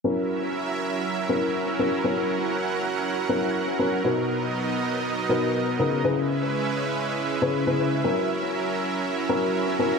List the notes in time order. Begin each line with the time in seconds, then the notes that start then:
0.04 F#3 C#4 E4 F#4 A#4 E5
1.29 F#3 C#4 E4 F#4 A#4
1.79 F#3 C#4 E4 F#4 A#4
2.04 F#3 C#4 E4 F#4 A#4 F#5
3.29 F#3 C#4 E4 F#4 A#4
3.79 C#4 E4 F#4 A#4
4.04 B2 B3 D#4 F#4 A#4 D#5
5.29 B2 B3 D#4 F#4 A#4
5.79 C#3 B3 D#4 F#4 A#4
6.04 C#3 G#3 C#4 E4 G#4 B4 E5
7.42 C#3 C#4 E4 G#4 B4
7.67 C#3 C#4 E4 G#4 B4
8.04 F#3 C#4 E4 F#4 A#4
9.29 F#3 C#4 E4 F#4 A#4
9.79 F#3 C#4 E4 F#4 A#4